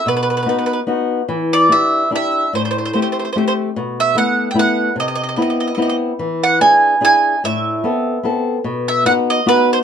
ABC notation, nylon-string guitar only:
X:1
M:3/4
L:1/8
Q:"Swing" 1/4=146
K:Bphr
V:1 name="Nylon-string guitar"
B,,2 [B,^DF]2 [B,DF]2 | E,2 [DEG]2 [DEG]2 | A,,2 [A,CG]2 [A,CG]2 | B,,2 [A,B,E]2 [A,B,E]2 |
C,2 [B,CE]2 [B,CE]2 | E,2 [DE^G]2 [DEG]2 | A,,2 [B,CA]2 [B,CA]2 | B,,2 [B,^DF]2 [B,DF]2 |]